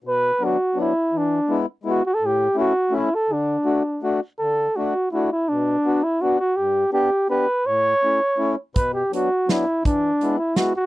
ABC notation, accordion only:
X:1
M:3/4
L:1/8
Q:1/4=166
K:D
V:1 name="Accordion"
B,,2 [F,B,D] z [F,B,D] z | E,2 [^G,B,E] z [G,B,E] z | A,,2 [A,CE] z [A,CE] z | D,2 [A,DF] z [A,DF] z |
D,2 [A,DF] z [A,DF] z | B,,2 [B,DF] z [B,DF] z | G,,2 [B,DG] z [B,DG] z | A,,2 [A,CE] z [A,CE] z |
B,,2 [F,B,D] z [F,B,D] z | E,2 [^G,B,E] z [G,B,E] z |]